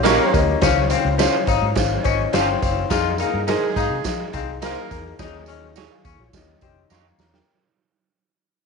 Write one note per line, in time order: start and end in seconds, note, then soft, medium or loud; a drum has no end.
0.00 0.18 A#1 medium
0.00 0.45 A#3 loud
0.04 0.59 A#3 medium
0.04 0.25 C#4 loud
0.04 0.19 D#4 medium
0.04 0.26 G4 loud
0.04 0.20 G4 medium
0.04 0.45 A#4 loud
0.04 0.20 C#5 medium
0.04 0.26 C#5 loud
0.04 snare loud
0.04 closed hi-hat loud
0.04 tambourine medium
0.32 0.54 D2 loud
0.32 0.54 C#4 medium
0.32 0.54 G4 medium
0.32 0.54 D#5 loud
0.32 kick medium
0.32 closed hi-hat medium
0.32 tambourine medium
0.61 0.93 C#2 loud
0.61 1.44 C#3 medium
0.61 0.83 C#4 loud
0.61 0.79 C#4 medium
0.61 0.83 C5 loud
0.61 0.83 F5 loud
0.61 kick loud
0.61 snare loud
0.61 closed hi-hat medium
0.61 tambourine medium
0.90 1.07 C4 medium
0.90 1.11 C#4 medium
0.90 1.11 C5 medium
0.90 1.12 F5 loud
0.90 closed hi-hat medium
0.90 tambourine medium
1.05 1.25 C#2 medium
1.18 1.39 C#4 loud
1.18 1.34 C#4 medium
1.18 1.34 F4 medium
1.18 1.40 C5 loud
1.18 1.34 C5 medium
1.18 1.40 F5 loud
1.18 snare loud
1.18 closed hi-hat medium
1.18 tambourine loud
1.47 1.58 G#1 medium
1.47 1.68 C#4 medium
1.47 1.65 D#4 medium
1.47 1.68 C5 medium
1.47 1.69 F5 loud
1.47 kick medium
1.47 closed hi-hat medium
1.47 tambourine medium
1.62 1.72 G#2 medium
1.75 1.97 G#1 loud
1.75 1.97 C#4 medium
1.75 1.97 C5 medium
1.75 1.97 F5 medium
1.75 kick medium
1.75 snare loud
1.75 closed hi-hat loud
1.75 tambourine loud
2.03 2.26 G#1 medium
2.03 2.25 C#4 medium
2.03 2.22 C#4 medium
2.03 2.25 C5 medium
2.03 2.26 D#5 loud
2.03 kick medium
2.03 closed hi-hat medium
2.03 tambourine medium
2.33 2.54 G1 loud
2.33 2.87 C4 medium
2.33 2.54 C#4 loud
2.33 2.48 C#4 medium
2.33 2.49 F4 medium
2.33 2.54 C5 loud
2.33 2.49 C5 medium
2.33 2.55 F5 loud
2.33 snare loud
2.33 closed hi-hat loud
2.33 tambourine medium
2.61 2.83 F#1 loud
2.61 2.82 C#4 medium
2.61 2.83 C5 medium
2.61 2.83 F5 loud
2.61 kick medium
2.61 closed hi-hat medium
2.61 tambourine medium
2.90 3.22 F2 loud
2.90 3.11 D#4 loud
2.90 3.07 F4 medium
2.90 3.11 G#4 loud
2.90 3.12 F5 loud
2.90 kick loud
2.90 snare loud
2.90 closed hi-hat medium
2.90 tambourine medium
3.18 3.42 A#3 medium
3.18 3.39 D#4 medium
3.18 3.36 D#4 medium
3.18 3.40 G#4 medium
3.18 3.42 A#4 medium
3.18 3.40 F5 loud
3.18 closed hi-hat medium
3.18 tambourine medium
3.34 3.54 G2 medium
3.47 4.30 G#3 loud
3.47 3.68 D#4 loud
3.47 3.62 D#4 medium
3.47 3.68 G#4 loud
3.47 4.30 G#4 loud
3.47 3.63 G#4 medium
3.47 3.69 A#4 loud
3.47 3.63 C5 medium
3.47 snare loud
3.47 closed hi-hat medium
3.47 tambourine loud
3.75 3.87 G#2 medium
3.75 3.97 D#4 medium
3.75 3.93 D#4 medium
3.75 3.97 G#4 medium
3.75 3.98 F5 loud
3.75 kick medium
3.75 closed hi-hat medium
3.75 tambourine soft
3.90 4.01 C3 medium
4.04 4.25 F3 loud
4.04 4.25 D#4 medium
4.04 4.26 G#4 medium
4.04 4.26 F5 medium
4.04 kick medium
4.04 snare loud
4.04 closed hi-hat medium
4.04 tambourine loud
4.33 4.75 C2 medium
4.33 4.50 C4 medium
4.33 4.54 D#4 medium
4.33 4.54 G#4 medium
4.33 4.55 F5 loud
4.33 kick medium
4.33 closed hi-hat medium
4.33 tambourine medium
4.62 5.16 A#3 medium
4.62 5.03 A#3 loud
4.62 4.82 D#4 loud
4.62 4.76 D#4 medium
4.62 4.77 G#4 loud
4.62 4.83 G#4 loud
4.62 5.03 A#4 loud
4.62 4.77 C5 medium
4.62 4.84 F5 loud
4.62 snare loud
4.62 closed hi-hat loud
4.62 tambourine medium
4.90 5.11 E2 medium
4.90 5.11 D#4 medium
4.90 5.11 G#4 medium
4.90 5.12 A#4 loud
4.90 kick medium
4.90 closed hi-hat medium
4.90 tambourine medium
5.19 5.87 D#2 loud
5.19 6.01 D#3 medium
5.19 5.40 C#4 loud
5.19 5.36 D#4 medium
5.19 5.40 G#4 loud
5.19 5.40 D#5 loud
5.19 kick loud
5.19 snare loud
5.19 closed hi-hat medium
5.19 tambourine medium
5.46 5.68 C#4 medium
5.46 5.64 C#4 medium
5.46 5.69 G#4 medium
5.46 5.69 D#5 medium
5.46 closed hi-hat medium
5.46 tambourine soft
5.76 5.91 D#4 medium
5.76 5.90 G4 medium
5.76 5.91 G#4 medium
5.76 5.92 C#5 medium
5.76 snare loud
5.76 closed hi-hat medium
5.76 tambourine loud
5.92 6.18 G#4 medium
5.92 6.18 F5 medium
6.05 6.15 D#2 medium
6.05 6.22 C#4 medium
6.05 kick medium
6.05 closed hi-hat medium
6.05 tambourine soft
6.18 6.29 A#1 medium
6.18 6.47 F4 medium
6.18 6.47 C#5 medium
6.33 6.54 D#2 loud
6.33 7.15 D#3 medium
6.33 6.54 C#4 medium
6.33 6.55 G4 medium
6.33 6.55 D#5 medium
6.33 kick medium
6.33 snare medium
6.33 closed hi-hat loud
6.33 tambourine loud
6.61 6.83 F1 medium
6.61 6.79 C4 medium
6.61 6.83 C#4 medium
6.61 6.83 G4 medium
6.61 6.84 D#5 loud
6.61 kick loud
6.61 closed hi-hat medium
6.61 tambourine soft
6.90 7.11 F2 medium
6.90 7.44 A#3 medium
6.90 7.05 D#4 medium
6.90 7.05 G4 medium
6.90 7.06 C#5 medium
6.90 7.18 D#5 medium
6.90 7.18 C6 medium
6.90 snare medium
6.90 tambourine medium
7.18 7.39 E2 loud
7.18 7.33 C#5 medium
7.18 7.33 A#5 medium
7.18 snare medium
7.18 tambourine medium
7.34 7.61 A#4 medium
7.34 7.61 G5 medium
7.34 snare medium